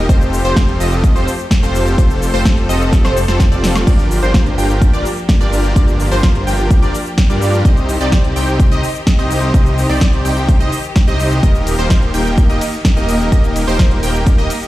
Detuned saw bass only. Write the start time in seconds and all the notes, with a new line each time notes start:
0.09 F1
0.45 F1
0.80 F1
1.16 F1
1.63 F1
1.98 F1
2.34 F1
2.69 F1
3.04 F1
3.28 F1
3.52 F1
3.87 G1
4.22 G1
4.58 G1
4.93 G1
5.41 G1
5.76 G1
6.12 G1
6.47 G1
6.82 G1
7.30 G2
7.65 C2
8.01 C2
8.36 C2
8.71 C2
9.19 C2
9.54 C2
9.90 C2
10.25 C2
10.60 C2
11.08 C2
11.43 D#1
11.79 D#1
12.14 D#1
12.49 D#1
12.97 D#1
13.32 D#1
13.68 D#1
14.03 D#1
14.38 D#1